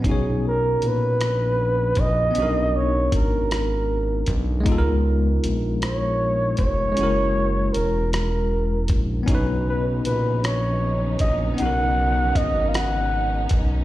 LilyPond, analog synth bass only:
\new Staff \with { instrumentName = "Analog synth bass" } { \clef bass \time 6/8 \key b \major \tempo 4. = 52 b,,4 ais,,4. ais,,8 | b,,4 gis,,4. b,,8 | cis,4 ais,,4. eis,,8 | fis,,4 e,,4. ais,,8 |
b,,4 ais,,4. ais,,8 | b,,4 gis,,4. b,,8 | }